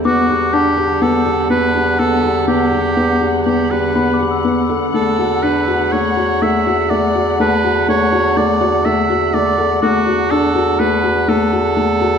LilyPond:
<<
  \new Staff \with { instrumentName = "Glockenspiel" } { \time 5/4 \key d \mixolydian \tempo 4 = 123 d'''4 a''2~ a''8. r4 r16 | r2. b''16 d'''16 e'''4.~ | e'''4 r1 | a''2~ a''8. r2 r16 |
d'''2~ d'''8. r2 r16 | }
  \new Staff \with { instrumentName = "Oboe" } { \time 5/4 \key d \mixolydian fis'4 g'4 a'4 b'4 a'4 | g'2 g'8 b'4 r4. | a'4 b'4 cis''4 e''4 d''4 | b'4 cis''4 d''4 e''4 d''4 |
fis'4 a'4 b'4 a'2 | }
  \new Staff \with { instrumentName = "Felt piano" } { \time 5/4 \key d \mixolydian b8 g'8 d'8 g'8 b8 g'8 b8 g'8 b8 g'8 | b8 g'8 b8 g'8 b8 g'8 b8 g'8 b8 a'8 | a8 fis'8 d'8 fis'8 a8 fis'8 a8 fis'8 a8 fis'8 | a8 fis'8 a8 fis'8 a8 fis'8 a8 fis'8 a8 a'8 |
a8 fis'8 d'8 fis'8 a8 fis'8 a8 fis'8 a8 fis'8 | }
  \new Staff \with { instrumentName = "String section" } { \clef bass \time 5/4 \key d \mixolydian << { <d fis''>1~ <d fis''>4~ | <d fis''>1~ <d fis''>4~ | <d fis''>1~ <d fis''>4~ | <d fis''>1~ <d fis''>4~ |
<d fis''>1~ <d fis''>4 | } \\ { g1~ g4~ | g1~ g4 | a1~ a4~ | a1~ a4~ |
a1~ a4 | } >> }
  \new Staff \with { instrumentName = "Bass clarinet" } { \clef bass \time 5/4 \key d \mixolydian e,1~ e,4~ | e,1~ e,4 | e,1~ e,4~ | e,1~ e,4 |
e,1~ e,4 | }
>>